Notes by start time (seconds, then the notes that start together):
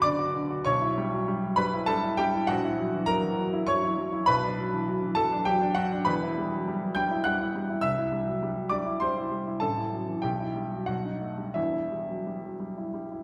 Already playing: B1 C#3 D3 F#4 B4 F#5 B5
0.02 D3 D5 D6
0.19 F#4
0.35 D3
0.50 F#4
0.65 B1 C#5 C#6
0.82 E4
0.98 G3
1.12 F#3
1.28 G3
1.44 F#3
1.56 G3 B4 B5
1.73 E4
1.86 G3 A4 A5
2.03 E4
2.17 G3 G4 G5
2.35 E4
2.47 A#1 F#4 F#5
2.65 E4
2.79 F#3
2.94 E3
3.06 F#3 A#4 A#5
3.24 E3
3.39 F#3
3.53 E4
3.67 F#3 C#5 C#6
3.83 E4
3.98 F#3
4.13 E4
4.26 B1 B4 B5
4.44 D4
4.59 F#3
4.74 E3
4.88 F#3
5.03 E3
5.15 F#3 A4 A5
5.32 D4
5.45 F#3 G4 G5
5.61 D4
5.75 F#3 F#4 F#5
5.92 D4
6.05 E1 E2 B4 B5
6.23 E4
6.38 G3
6.53 F#3
6.68 G3
6.83 F#3
6.95 G3 G5 G6
7.11 E4
7.24 G3 F#5 F#6
7.41 E4
7.55 G3
7.70 E4
7.81 C2 E5 E6
7.98 E4
8.12 G3
8.27 F#3
8.43 G3
8.57 F#3
8.70 G3 D5 D6
8.87 E4
9.00 G3 C5 C6
9.16 E4
9.32 G3
9.47 E4
9.60 A1 A4 A5
9.77 E4
9.92 F#3
10.08 E3
10.22 B1 G4 G5
10.40 E4
10.56 G3
10.72 F#3
10.86 B1 F#4 F#5
11.05 D#4
11.21 A3
11.38 G3
11.54 E1 E2 E4 E5
11.74 E4
11.92 G3
12.09 F#3
12.27 G3
12.44 F#3
12.60 G3
12.78 E4
12.94 G3
13.12 E4